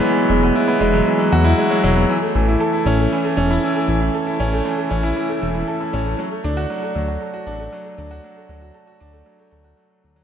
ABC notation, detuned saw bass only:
X:1
M:4/4
L:1/8
Q:1/4=117
K:A
V:1 name="Detuned saw bass" clef=bass
z E,,, z E,,, z E,, z E,,, | z A,,, z A,,, z E,,, z A,,, | z A,,, z A,,, z E,,, z A,,, | z D,, z D,, z A,,, z D,, |
z D,, z D,, z D,, z D,, |]